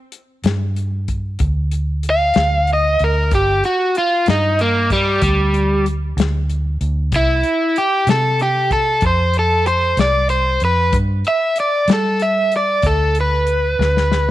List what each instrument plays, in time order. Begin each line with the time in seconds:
0.12 closed hi-hat
0.44 fingered electric bass G2, snare, closed hi-hat
0.76 closed hi-hat
1.08 kick, closed hi-hat
1.39 fingered electric bass D2, kick, closed hi-hat
1.71 closed hi-hat
2.03 closed hi-hat
2.10 overdriven electric guitar F5
2.34 fingered electric bass D2, snare, closed hi-hat
2.67 closed hi-hat
2.73 overdriven electric guitar D#5
2.99 fingered electric bass D2, closed hi-hat
3.04 overdriven electric guitar A#4
3.31 fingered electric bass G1, overdriven electric guitar G4, kick, closed hi-hat
3.64 overdriven electric guitar F#4, closed hi-hat
3.95 overdriven electric guitar F4, closed hi-hat
4.26 fingered electric bass G2, overdriven electric guitar D#4, snare, closed hi-hat
4.59 overdriven electric guitar A#3, closed hi-hat
4.90 overdriven electric guitar G3, kick, snare, closed hi-hat
5.22 fingered electric bass D2, overdriven electric guitar G3, kick, closed hi-hat
5.54 closed hi-hat
5.86 closed hi-hat
6.17 fingered electric bass D2, snare, closed hi-hat
6.49 closed hi-hat
6.81 fingered electric bass D2, closed hi-hat
7.12 fingered electric bass C2, overdriven electric guitar E4, kick, closed hi-hat
7.43 closed hi-hat
7.76 overdriven electric guitar G4, closed hi-hat
8.07 fingered electric bass C3, overdriven electric guitar A4, snare, closed hi-hat
8.39 overdriven electric guitar G4, closed hi-hat
8.71 overdriven electric guitar A4, kick, closed hi-hat
9.01 fingered electric bass F2, kick, closed hi-hat
9.06 overdriven electric guitar C5
9.34 closed hi-hat
9.39 overdriven electric guitar A4
9.66 overdriven electric guitar C5, closed hi-hat
9.97 fingered electric bass C2, overdriven electric guitar D5, snare, closed hi-hat
10.29 overdriven electric guitar C5, closed hi-hat
10.60 fingered electric bass F2, closed hi-hat
10.65 overdriven electric guitar B4
10.93 fingered electric bass G2, kick, closed hi-hat
11.25 overdriven electric guitar E5, closed hi-hat
11.56 closed hi-hat
11.60 overdriven electric guitar D5
11.88 fingered electric bass G3, snare, closed hi-hat
11.93 overdriven electric guitar A4
12.20 overdriven electric guitar E5, closed hi-hat
12.52 closed hi-hat
12.56 overdriven electric guitar D5
12.82 fingered electric bass D2, kick, closed hi-hat
12.86 overdriven electric guitar A4
13.15 closed hi-hat
13.21 overdriven electric guitar B4
13.47 closed hi-hat
13.79 fingered electric bass D2, snare
13.97 snare
14.12 snare